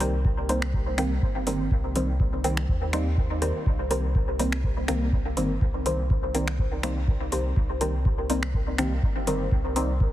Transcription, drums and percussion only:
0.00 open hi-hat medium
0.25 kick loud
0.49 open hi-hat medium
0.62 finger snap medium
0.74 kick loud
0.98 finger snap medium
0.98 open hi-hat medium
1.22 kick loud
1.47 open hi-hat medium
1.71 kick loud
1.96 open hi-hat medium
2.20 kick loud
2.44 open hi-hat medium
2.57 finger snap medium
2.69 kick loud
2.93 finger snap medium
2.93 open hi-hat medium
3.17 kick loud
3.42 open hi-hat medium
3.66 kick loud
3.91 open hi-hat medium
4.15 kick loud
4.39 open hi-hat medium
4.52 finger snap medium
4.64 kick loud
4.88 finger snap medium
4.88 open hi-hat medium
5.13 kick loud
5.37 open hi-hat medium
5.61 kick loud
5.86 open hi-hat medium
6.10 kick loud
6.35 open hi-hat medium
6.48 finger snap medium
6.59 kick loud
6.83 finger snap medium
6.83 open hi-hat medium
7.08 kick loud
7.32 open hi-hat medium
7.56 kick loud
7.81 open hi-hat medium
8.05 kick loud
8.30 open hi-hat medium
8.43 finger snap medium
8.54 kick loud
8.78 finger snap medium
8.78 open hi-hat medium
9.03 kick loud
9.27 open hi-hat medium
9.52 kick loud
9.76 open hi-hat medium
10.00 kick loud

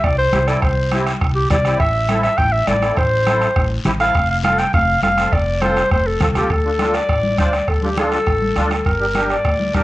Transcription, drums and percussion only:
0.04 bombo low medium
0.04 bombo rim loud
0.04 high conga soft
0.04 long guiro medium
0.33 bombo rim medium
0.33 high conga medium
0.33 short guiro medium
0.48 bombo rim medium
0.48 short guiro medium
0.62 bombo low medium
0.62 bombo rim medium
0.62 high conga soft
0.62 long guiro medium
0.92 bombo rim medium
0.92 high conga medium
0.92 short guiro medium
1.06 bombo rim medium
1.06 short guiro medium
1.21 bombo low medium
1.21 bombo rim medium
1.21 high conga soft
1.21 long guiro medium
1.50 bombo low medium
1.50 bombo rim medium
1.50 high conga medium
1.50 low conga medium
1.50 short guiro medium
1.65 bombo rim medium
1.65 short guiro medium
1.80 bombo low medium
1.80 bombo rim medium
1.80 high conga soft
1.80 long guiro medium
2.09 bombo rim medium
2.09 high conga medium
2.09 short guiro medium
2.23 bombo rim medium
2.23 short guiro medium
2.38 bombo low medium
2.38 bombo rim medium
2.38 high conga soft
2.38 long guiro medium
2.68 bombo rim medium
2.68 high conga medium
2.68 short guiro medium
2.82 bombo rim medium
2.82 short guiro medium
2.97 bombo low medium
2.97 bombo rim medium
2.97 high conga soft
2.97 long guiro medium
3.26 bombo rim medium
3.26 high conga medium
3.26 short guiro medium
3.41 bombo rim medium
3.41 short guiro medium
3.56 bombo low medium
3.56 bombo rim medium
3.56 high conga soft
3.56 long guiro medium
3.85 bombo rim medium
3.85 high conga medium
3.85 low conga medium
3.85 short guiro medium
4.00 bombo rim medium
4.00 short guiro medium
4.15 bombo low medium
4.15 bombo rim medium
4.15 high conga soft
4.15 long guiro medium
4.44 bombo rim loud
4.44 high conga medium
4.44 short guiro medium
4.58 bombo rim medium
4.58 short guiro medium
4.73 bombo low medium
4.73 bombo rim medium
4.73 high conga soft
4.73 long guiro medium
5.03 bombo rim medium
5.03 high conga medium
5.03 short guiro medium
5.18 bombo rim medium
5.18 short guiro medium
5.32 bombo low medium
5.32 bombo rim medium
5.32 high conga soft
5.32 long guiro medium
5.62 bombo rim medium
5.62 high conga medium
5.62 short guiro medium
5.77 bombo rim medium
5.77 short guiro medium
5.91 bombo low medium
5.91 bombo rim medium
5.91 high conga soft
5.91 long guiro medium
6.20 bombo low medium
6.20 bombo rim medium
6.20 high conga medium
6.20 low conga medium
6.20 short guiro medium
6.35 bombo rim medium
6.35 short guiro medium
6.50 bombo low medium
6.50 bombo rim medium
6.50 high conga soft
6.50 long guiro medium
6.79 bombo rim medium
6.79 high conga medium
6.79 short guiro medium
6.94 bombo rim medium
6.94 short guiro medium
7.09 bombo low medium
7.09 bombo rim medium
7.09 high conga soft
7.09 long guiro medium
7.24 high conga medium
7.38 bombo low medium
7.38 bombo rim medium
7.38 high conga medium
7.38 short guiro medium
7.53 bombo rim medium
7.53 short guiro medium
7.68 bombo low medium
7.68 bombo rim medium
7.68 high conga soft
7.68 long guiro medium
7.82 high conga medium
7.97 bombo rim medium
7.97 high conga medium
7.97 short guiro medium
8.12 bombo rim medium
8.12 short guiro medium
8.26 bombo low medium
8.26 bombo rim medium
8.26 high conga soft
8.26 long guiro medium
8.42 high conga medium
8.56 bombo rim medium
8.56 high conga medium
8.56 short guiro medium
8.71 bombo rim medium
8.71 short guiro medium
8.85 bombo low medium
8.85 bombo rim medium
8.85 high conga soft
8.85 long guiro medium
9.14 bombo rim medium
9.14 high conga medium
9.14 short guiro medium
9.30 bombo rim medium
9.30 short guiro medium
9.45 bombo low medium
9.45 bombo rim medium
9.45 high conga soft
9.45 long guiro medium
9.60 high conga medium
9.74 bombo low medium
9.74 bombo rim medium
9.74 high conga medium
9.74 short guiro medium

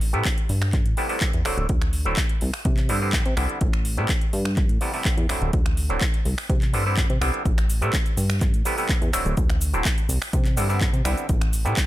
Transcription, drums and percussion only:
0.01 open hi-hat loud
0.14 closed hi-hat soft
0.25 kick medium
0.25 clap loud
0.25 closed hi-hat medium
0.38 closed hi-hat medium
0.49 open hi-hat loud
0.62 finger snap medium
0.73 kick loud
0.73 clap soft
0.73 closed hi-hat medium
0.86 closed hi-hat soft
0.97 open hi-hat medium
1.09 open hi-hat medium
1.21 kick loud
1.21 clap loud
1.21 closed hi-hat medium
1.33 closed hi-hat medium
1.45 finger snap medium
1.45 open hi-hat loud
1.58 closed hi-hat soft
1.69 kick loud
1.69 closed hi-hat medium
1.82 finger snap medium
1.82 closed hi-hat soft
1.93 open hi-hat loud
2.05 closed hi-hat soft
2.16 kick loud
2.16 clap loud
2.16 closed hi-hat medium
2.29 closed hi-hat medium
2.41 open hi-hat loud
2.54 finger snap medium
2.54 open hi-hat medium
2.65 kick loud
2.65 closed hi-hat medium
2.77 clap soft
2.77 closed hi-hat soft
2.89 open hi-hat loud
3.13 kick loud
3.13 clap loud
3.13 closed hi-hat medium
3.26 closed hi-hat soft
3.37 finger snap medium
3.37 open hi-hat loud
3.49 closed hi-hat soft
3.61 kick loud
3.61 closed hi-hat medium
3.73 finger snap medium
3.73 closed hi-hat soft
3.85 open hi-hat loud
3.97 closed hi-hat soft
4.09 kick loud
4.09 clap loud
4.09 closed hi-hat medium
4.21 closed hi-hat soft
4.33 open hi-hat loud
4.45 finger snap medium
4.57 kick loud
4.57 clap soft
4.57 closed hi-hat medium
4.69 closed hi-hat soft
4.81 open hi-hat loud
4.94 open hi-hat medium
5.05 kick loud
5.05 clap loud
5.05 closed hi-hat medium
5.18 closed hi-hat soft
5.29 finger snap medium
5.29 open hi-hat loud
5.42 closed hi-hat soft
5.53 kick loud
5.53 closed hi-hat medium
5.66 finger snap medium
5.66 closed hi-hat soft
5.77 open hi-hat loud
5.90 closed hi-hat soft
6.01 kick loud
6.01 clap loud
6.01 closed hi-hat medium
6.14 closed hi-hat soft
6.25 open hi-hat loud
6.38 finger snap medium
6.38 open hi-hat medium
6.50 kick loud
6.50 closed hi-hat medium
6.62 clap soft
6.62 closed hi-hat soft
6.74 open hi-hat loud
6.97 kick loud
6.97 clap loud
6.97 closed hi-hat medium
7.10 closed hi-hat soft
7.22 finger snap medium
7.22 open hi-hat loud
7.34 closed hi-hat soft
7.45 kick loud
7.45 closed hi-hat medium
7.45 shaker soft
7.58 finger snap medium
7.58 closed hi-hat soft
7.58 shaker soft
7.70 open hi-hat loud
7.70 shaker medium
7.82 closed hi-hat soft
7.82 shaker soft
7.93 kick loud
7.93 clap loud
7.93 closed hi-hat medium
7.93 shaker soft
8.06 closed hi-hat soft
8.06 shaker soft
8.17 open hi-hat loud
8.17 shaker medium
8.30 finger snap medium
8.30 shaker soft
8.41 kick loud
8.41 clap soft
8.41 closed hi-hat medium
8.41 shaker soft
8.54 closed hi-hat soft
8.54 shaker soft
8.65 open hi-hat loud
8.65 shaker medium
8.78 open hi-hat medium
8.78 shaker soft
8.89 kick loud
8.89 clap loud
8.89 closed hi-hat medium
8.89 shaker soft
9.02 closed hi-hat soft
9.02 shaker soft
9.13 finger snap medium
9.13 open hi-hat loud
9.13 shaker medium
9.26 closed hi-hat soft
9.26 shaker soft
9.37 kick loud
9.37 closed hi-hat medium
9.37 shaker soft
9.50 finger snap medium
9.50 closed hi-hat soft
9.50 shaker soft
9.61 open hi-hat loud
9.61 shaker medium
9.74 closed hi-hat soft
9.74 shaker soft
9.85 kick loud
9.85 clap loud
9.85 closed hi-hat medium
9.85 shaker soft
9.98 closed hi-hat soft
9.98 shaker soft
10.09 open hi-hat loud
10.09 shaker medium
10.22 finger snap medium
10.22 open hi-hat medium
10.22 shaker soft
10.33 kick loud
10.33 closed hi-hat medium
10.33 shaker soft
10.45 clap soft
10.45 closed hi-hat soft
10.45 shaker soft
10.57 open hi-hat loud
10.57 shaker medium
10.70 shaker soft
10.81 kick loud
10.81 clap loud
10.81 closed hi-hat medium
10.81 shaker soft
10.94 closed hi-hat soft
10.94 shaker soft
11.05 finger snap medium
11.05 open hi-hat loud
11.05 shaker medium
11.18 closed hi-hat soft
11.18 shaker soft
11.29 kick loud
11.29 closed hi-hat medium
11.29 shaker soft
11.41 finger snap medium
11.41 closed hi-hat soft
11.41 shaker soft
11.53 open hi-hat loud
11.53 shaker medium
11.66 closed hi-hat soft
11.66 shaker soft
11.77 kick loud
11.77 clap loud
11.77 closed hi-hat medium
11.77 shaker soft

